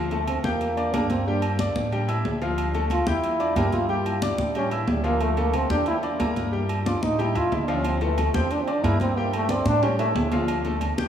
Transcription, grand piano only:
0.12 0.38 A3 medium
0.12 0.39 A4 medium
0.12 0.39 A5 medium
0.44 0.71 G4 medium
0.44 0.71 G5 medium
0.44 0.71 G6 medium
0.77 0.90 D4 medium
0.77 0.90 D5 medium
0.77 0.91 D6 medium
0.94 1.21 A#3 medium
0.94 1.21 A#4 medium
0.94 1.21 A#5 medium
1.27 1.54 G3 medium
1.27 1.54 G4 medium
1.27 1.54 G5 medium
1.60 1.86 D4 medium
1.60 1.87 D5 medium
1.60 1.87 D6 medium
1.92 2.06 G3 medium
1.92 2.06 G4 medium
1.92 2.06 G5 medium
2.08 2.35 E4 medium
2.08 2.35 E5 medium
2.08 2.35 E6 medium
2.42 2.68 F3 medium
2.42 2.68 F4 medium
2.42 2.69 F5 medium
2.75 3.01 A3 medium
2.75 3.01 A4 medium
2.75 3.02 A5 medium
3.07 3.34 G4 medium
3.07 3.34 G5 medium
3.07 3.34 G6 medium
3.40 3.53 D4 medium
3.40 3.54 D5 medium
3.40 3.54 D6 medium
3.57 3.83 A#3 medium
3.57 3.84 A#4 medium
3.57 3.84 A#5 medium
3.89 4.16 G3 medium
3.89 4.16 G4 medium
3.89 4.17 G5 medium
4.22 4.49 D4 medium
4.22 4.49 D5 medium
4.22 4.50 D6 medium
4.56 4.69 G3 medium
4.56 4.69 G4 medium
4.56 4.69 G5 medium
4.72 4.99 E4 medium
4.72 4.99 E5 medium
4.72 4.99 E6 medium
5.04 5.31 F3 medium
5.04 5.31 F4 medium
5.04 5.31 F5 medium
5.37 5.64 A3 medium
5.37 5.65 A4 medium
5.37 5.65 A5 medium
5.70 5.97 G4 medium
5.70 5.97 G5 medium
5.70 5.97 G6 medium
6.03 6.17 D4 medium
6.03 6.17 D5 medium
6.03 6.17 D6 medium
6.19 6.46 A#3 medium
6.19 6.47 A#4 medium
6.19 6.47 A#5 medium
6.52 6.80 G3 medium
6.52 6.80 G4 medium
6.52 6.80 G5 medium
6.86 7.13 D4 medium
6.86 7.13 D5 medium
6.86 7.13 D6 medium
7.19 7.32 G3 medium
7.19 7.32 G4 medium
7.19 7.32 G5 medium
7.35 7.62 E4 medium
7.35 7.62 E5 medium
7.35 7.63 E6 medium
7.68 7.95 F3 medium
7.68 7.96 F4 medium
7.68 7.96 F5 medium
8.01 8.28 A3 medium
8.01 8.29 A4 medium
8.01 8.29 A5 medium
8.34 8.61 G4 medium
8.34 8.62 G5 medium
8.34 8.62 G6 medium
8.67 8.81 D4 medium
8.67 8.81 D5 medium
8.67 8.81 D6 medium
8.84 9.11 A#3 medium
8.84 9.11 A#4 medium
8.84 9.11 A#5 medium
9.17 9.44 G3 medium
9.17 9.44 G4 medium
9.17 9.44 G5 medium
9.50 9.77 D4 medium
9.50 9.77 D5 medium
9.50 9.77 D6 medium
9.83 9.96 G3 medium
9.83 9.96 G4 medium
9.83 9.96 G5 medium
10.00 10.27 E4 medium
10.00 10.27 E5 medium
10.00 10.27 E6 medium
10.33 10.59 F3 medium
10.33 10.60 F4 medium
10.33 10.60 F5 medium
10.65 10.92 A3 medium
10.65 10.92 A4 medium
10.65 10.93 A5 medium
10.98 11.08 G4 medium
10.98 11.08 G5 medium
10.98 11.08 G6 medium

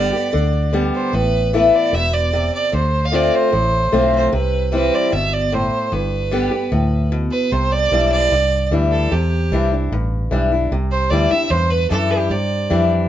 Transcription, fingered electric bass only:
0.00 0.11 G1 medium
0.34 0.90 D2 medium
1.13 1.70 A1 medium
1.93 2.49 E1 medium
2.73 3.29 D2 medium
3.53 3.87 A1 medium
3.93 4.27 B1 medium
4.33 4.89 C2 medium
5.13 5.69 G1 medium
5.92 6.48 G1 medium
6.72 7.28 D2 medium
7.52 7.91 C2 medium
7.92 8.31 B1 medium
8.32 8.71 C2 medium
8.71 9.10 D2 medium
9.12 9.50 E2 medium
9.52 9.90 C2 medium
9.92 10.30 A1 medium
10.32 10.70 B1 medium
10.72 11.10 C2 medium
11.11 11.30 D2 medium
11.50 11.89 E2 medium
11.91 12.30 F#2 medium
12.30 12.69 G2 medium
12.71 13.09 F2 medium

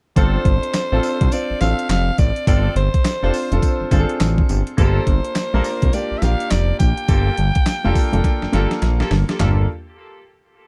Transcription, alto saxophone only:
0.17 1.34 C5 loud
1.33 1.60 D5 loud
1.61 1.88 F5 loud
1.90 2.20 F5 loud
2.18 2.47 D5 loud
2.48 2.74 D5 loud
2.77 3.88 C5 medium
4.79 5.95 C5 medium
5.94 6.19 D5 medium
6.18 6.24 E5 medium
6.22 6.52 F5 loud
6.51 6.79 D5 loud
6.79 8.78 G5 loud

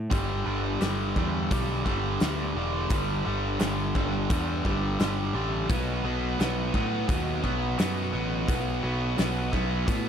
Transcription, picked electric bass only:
0.12 0.42 G1 medium
0.46 0.77 G1 medium
0.82 1.12 G1 medium
1.16 1.47 E2 medium
1.51 1.82 B1 medium
1.86 2.16 G1 medium
2.22 2.52 D2 medium
2.55 2.86 E1 medium
2.90 3.21 G1 medium
3.26 3.56 G1 medium
3.61 3.91 G1 medium
3.95 4.26 G1 medium
4.31 4.61 E2 medium
4.65 4.96 G1 medium
5.00 5.31 G1 medium
5.34 5.65 A1 medium
5.70 6.00 B1 medium
6.04 6.35 B1 medium
6.39 6.70 B1 medium
6.75 7.05 A2 medium
7.09 7.40 D#2 medium
7.44 7.75 B1 medium
7.80 8.10 F#2 medium
8.13 8.44 A1 medium
8.49 8.79 B1 medium
8.84 9.14 B1 medium
9.20 9.50 B1 medium
9.54 9.84 B1 medium
9.88 10.09 A2 medium

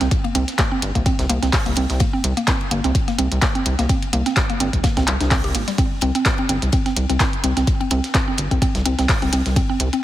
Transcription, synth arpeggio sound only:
0.01 0.04 C4 loud
0.24 0.26 A#3 loud
0.35 0.39 C4 loud
0.59 0.61 A#3 loud
0.72 0.75 C4 loud
0.95 0.97 A#3 loud
1.06 1.10 C4 loud
1.29 1.32 A#3 loud
1.42 1.45 C4 loud
1.66 1.68 A#3 loud
1.77 1.80 C4 loud
2.00 2.03 A#3 loud
2.13 2.16 C4 medium
2.37 2.39 A#3 loud
2.47 2.51 C4 loud
2.71 2.73 A#3 loud
2.84 2.87 C4 loud
3.08 3.10 A#3 loud
3.18 3.22 C4 loud
3.42 3.44 A#3 loud
3.55 3.58 C4 loud
3.79 3.81 A#3 loud
3.89 3.93 C4 loud
4.13 4.15 A#3 loud
4.26 4.29 C4 loud
4.50 4.52 A#3 loud
4.60 4.64 C4 loud
4.84 4.86 A#3 loud
4.97 5.00 C4 loud
5.21 5.25 D4 medium
5.31 5.35 C4 loud
5.44 5.49 G4 loud
5.55 5.58 A#3 medium
5.68 5.70 G3 loud
5.78 5.82 C4 loud
6.02 6.04 C4 loud
6.15 6.18 C4 loud
6.39 6.41 C4 loud
6.49 6.53 C4 loud
6.73 6.75 C4 loud
6.86 6.89 C4 loud
7.10 7.12 C4 loud
7.20 7.24 C4 loud
7.44 7.46 C4 loud
7.57 7.60 C4 loud
7.80 7.82 C4 loud
7.91 7.95 C4 loud
8.15 8.17 C4 loud
8.28 8.31 C4 loud
8.51 8.53 C4 loud
8.62 8.66 C4 loud
8.86 8.88 C4 loud
8.99 9.02 C4 loud
9.22 9.24 C4 loud
9.33 9.36 C4 loud
9.56 9.59 C4 loud
9.69 9.72 C4 loud
9.93 9.95 C4 loud

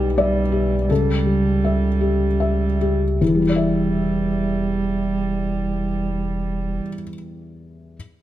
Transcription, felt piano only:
0.00 0.86 B1 medium
0.00 0.93 G3 soft
0.00 0.40 G4 soft
0.00 0.93 B4 medium
0.18 0.85 D5 medium
0.18 0.75 E5 soft
0.52 0.89 G4 soft
0.89 3.16 C#2 soft
0.89 2.77 A4 medium
1.26 1.86 G3 soft
1.64 2.25 E5 soft
2.01 2.64 G4 soft
2.40 3.04 E5 soft
2.81 3.21 G4 soft
3.21 6.80 E2 soft
3.21 3.41 E4 soft
3.28 6.87 E3 soft
3.35 6.94 G3 soft
3.42 7.01 E4 soft
3.49 7.08 D5 soft
3.56 7.15 E5 soft

